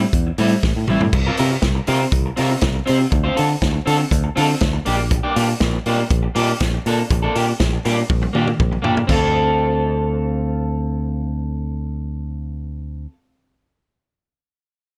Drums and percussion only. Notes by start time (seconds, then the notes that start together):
0.13 kick, closed hi-hat
0.38 open hi-hat
0.63 kick, snare
0.88 mid tom
1.00 floor tom
1.13 kick, crash
1.37 open hi-hat
1.62 kick, snare, closed hi-hat
1.87 open hi-hat
2.12 kick, closed hi-hat
2.37 open hi-hat
2.61 kick, snare, closed hi-hat
2.87 open hi-hat
3.12 kick, closed hi-hat
3.37 open hi-hat
3.62 kick, snare, closed hi-hat
3.87 open hi-hat
4.11 kick, closed hi-hat
4.37 open hi-hat
4.60 kick, snare, closed hi-hat
4.86 open hi-hat
5.11 kick, closed hi-hat
5.36 open hi-hat
5.60 kick, snare, closed hi-hat
5.86 open hi-hat
6.11 kick, closed hi-hat
6.35 open hi-hat
6.60 kick, snare, closed hi-hat
6.86 open hi-hat
7.11 kick, closed hi-hat
7.35 open hi-hat
7.60 kick, snare, closed hi-hat
7.85 open hi-hat
8.10 kick, high tom
8.22 high tom
8.35 mid tom
8.47 mid tom
8.60 kick, mid tom
8.72 mid tom
8.84 floor tom
8.97 floor tom
9.09 kick, floor tom, splash